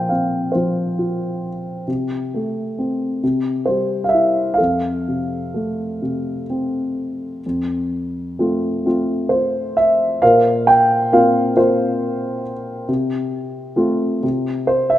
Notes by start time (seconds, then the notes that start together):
Already playing: A#2 F3 C5 F5 G5
0.09 C4 F5
0.52 F3 C5
0.99 F4
1.88 C3
2.34 A3
2.79 C4
3.23 C3
3.66 G3 C5
4.04 F5
4.09 E5
4.14 E4
4.54 A4 F5
4.60 F2
5.08 C3
5.54 A3
6.02 C3
6.50 C4
7.46 F2
8.39 A3 C4 F4
8.86 A3 C4 F4
9.29 C5
9.77 E5
10.22 A#2 A#4 C5 F5
10.67 G5
11.12 A#3 C4 F4 F5
11.56 A#3 C4 F4 C5
12.89 C3
13.76 A3 C4 F4
14.23 C3
14.67 C5
14.90 E5